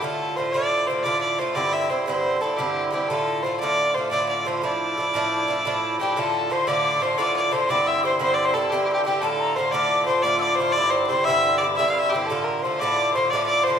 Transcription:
0.01 bouzouki A2 D3 A3 F4, fiddle A4
0.36 bouzouki A2 D3 A3 F4, fiddle C5
0.53 bouzouki A2 D3 A3 F4, fiddle D5
0.87 bouzouki A2 D3 A3, fiddle C5
0.91 bouzouki F4
1.03 bouzouki A2 D3 A3 F4, fiddle D5
1.21 fiddle D5
1.39 bouzouki A2 D3 A3 F4, fiddle C5
1.55 bouzouki G2 D3 C4 E4, fiddle D5
1.73 fiddle E5
1.89 bouzouki G2 D3 C4 E4, fiddle C5
2.07 bouzouki G2 D3 C4 E4, fiddle C5
2.41 bouzouki G2 D3 C4 E4, fiddle A4
2.56 bouzouki G2 D3 C4 E4, fiddle G4
2.90 bouzouki G2 D3 C4 E4, fiddle G4
3.08 bouzouki A2 D3 A3 F4, fiddle A4
3.42 bouzouki A2 D3, fiddle C5
3.47 bouzouki A3 F4
3.60 bouzouki A2 D3 A3 F4, fiddle D5
3.94 bouzouki A2 D3 A3, fiddle C5
3.99 bouzouki F4
4.11 bouzouki A2 D3 A3 F4, fiddle D5
4.29 fiddle D5
4.45 bouzouki A2 D3 A3 F4, fiddle C5
4.62 bouzouki A2 F3 D4 E4, fiddle D5
4.98 bouzouki A2 F3 D4 E4
5.14 bouzouki A2 F3 D4 E4
5.48 bouzouki A2 F3 D4 E4
5.65 bouzouki A2 F3 D4 E4
6.00 bouzouki A2 F3 D4 E4, fiddle G4, tin whistle G5
6.16 bouzouki A2 D3 A3 F4, fiddle A4, tin whistle A5
6.50 bouzouki A2 D3 A3 F4, fiddle C5, tin whistle C6
6.67 bouzouki A2 D3 A3 F4, fiddle D5, tin whistle D6
7.01 bouzouki A2 D3 A3 F4, fiddle C5, tin whistle C6
7.18 bouzouki A2 D3 A3 F4, fiddle D5
7.22 tin whistle D6
7.36 fiddle D5
7.51 bouzouki A2 D3 A3 F4, fiddle C5, tin whistle C6
7.69 bouzouki G2 D3 C4 E4, fiddle D5, tin whistle D6
7.87 fiddle E5, tin whistle E6
8.03 bouzouki G2 D3 C4 E4, fiddle C5, tin whistle C6
8.19 bouzouki G2 D3 C4 E4, fiddle C5, tin whistle C6
8.34 fiddle D5
8.44 fiddle C5, tin whistle C6
8.54 bouzouki G2 D3 C4 E4, fiddle A4, tin whistle A5
8.69 bouzouki G2 D3 C4, fiddle G4, tin whistle G5
8.74 bouzouki E4
8.84 fiddle G4
8.92 fiddle G4, tin whistle G5
9.05 bouzouki G2 D3 C4 E4, fiddle G4, tin whistle G5
9.21 bouzouki A2 D3 A3 F4, fiddle A4, tin whistle A5
9.40 tin whistle A#5
9.56 bouzouki A2 D3 A3 F4, fiddle C5, tin whistle C6
9.71 bouzouki A2 D3 A3 F4, fiddle D5
9.76 tin whistle D6
10.05 bouzouki A2 D3 A3, fiddle C5, tin whistle C6
10.10 bouzouki F4
10.22 bouzouki A2 D3 A3 F4, fiddle D5, tin whistle D6
10.39 fiddle D5, tin whistle D6 E6
10.55 bouzouki A2, fiddle C5
10.60 bouzouki D3 A3 F4, tin whistle C6
10.72 fiddle D5
10.76 bouzouki G2 D3 C4 E4, tin whistle D6
10.90 fiddle C5
11.07 bouzouki G2 D3, fiddle C5, tin whistle C6
11.11 bouzouki C4 E4
11.24 bouzouki G2 D3, fiddle E5, tin whistle E6
11.29 bouzouki C4 E4
11.58 bouzouki G2, fiddle D5, tin whistle D6
11.62 bouzouki D3 C4 E4
11.76 bouzouki G2 D3, fiddle E5, tin whistle E6
11.80 bouzouki C4 E4
11.90 fiddle F5
11.98 fiddle E5, tin whistle E6
12.09 bouzouki G2, fiddle G4, tin whistle G5
12.14 bouzouki D3 C4 E4
12.26 bouzouki A2 D3, fiddle A4, tin whistle A5
12.31 bouzouki A3 F4
12.44 fiddle A#4
12.62 bouzouki A2 D3 A3, fiddle C5, tin whistle C6
12.67 bouzouki F4
12.79 bouzouki A2 D3 A3 F4, fiddle D5, tin whistle D6
13.14 bouzouki A2 D3 A3 F4, fiddle C5, tin whistle C6
13.30 bouzouki A2 D3, fiddle D5, tin whistle D6
13.34 bouzouki A3 F4
13.47 fiddle D5
13.51 tin whistle D6
13.63 bouzouki A2, fiddle C5, tin whistle C6
13.68 bouzouki D3 A3 F4

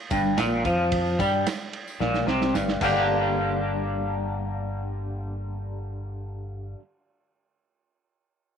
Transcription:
0.10 fingered electric bass G1, clean electric guitar G2, kick, ride, tambourine
0.38 fingered electric bass A#1, clean electric guitar A#2, snare, ride, tambourine
0.65 fingered electric bass F2, clean electric guitar F3, kick, ride, tambourine
0.92 kick, ride
1.06 tambourine
1.19 fingered electric bass G2, clean electric guitar G3, kick, ride, tambourine
1.33 tambourine
1.46 snare, ride, tambourine
1.61 tambourine
1.73 ride
1.88 tambourine
2.00 fingered electric bass A#1, clean electric guitar A#2, snare
2.14 snare, tambourine
2.27 fingered electric bass C2, clean electric guitar C3, snare
2.41 snare, tambourine
2.54 fingered electric bass G1, clean electric guitar G2, snare, tambourine
2.68 snare, tambourine
2.81 fingered electric bass G1, clean electric guitar G2 D3 G3 A#3 D4, kick, crash, tambourine
2.85 clean electric guitar G4

